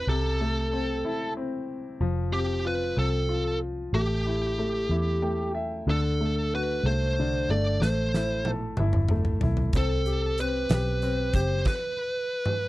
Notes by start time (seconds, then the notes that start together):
Already playing: C3 A3 C4 E4
0.07 C2 C3 A4
0.41 A3
0.73 C4
1.04 E1 E4
1.37 C4
2.00 F1 F3
2.32 C4 G4
2.65 F4 B4
2.96 C2 C4 A4
3.29 F4
3.93 A1 A3 G4
4.26 E4
4.59 A3
4.89 E2 E4
5.22 A3 G5
5.55 E5
5.87 D2 D3 A4
6.21 A3
6.55 F#4 B4
6.83 C2 A3 C5
7.20 D3
7.49 G1 A3 D5
7.80 A1 A3 C5, snare
8.14 E4, snare
8.45 A4, high tom
8.77 G1 E4, mid tom
8.93 mid tom
9.08 A3, mid tom
9.25 floor tom
9.41 B1 E4, floor tom
9.57 floor tom
9.73 C2 C4, kick, closed hi-hat
9.77 A4
10.06 G4, closed hi-hat
10.38 C4 B4, closed hi-hat
10.69 B1 G4, snare, closed hi-hat
11.02 C4, closed hi-hat
11.33 F#1 G4 C5, kick, closed hi-hat
11.65 B4, kick, snare, crash
12.46 mid tom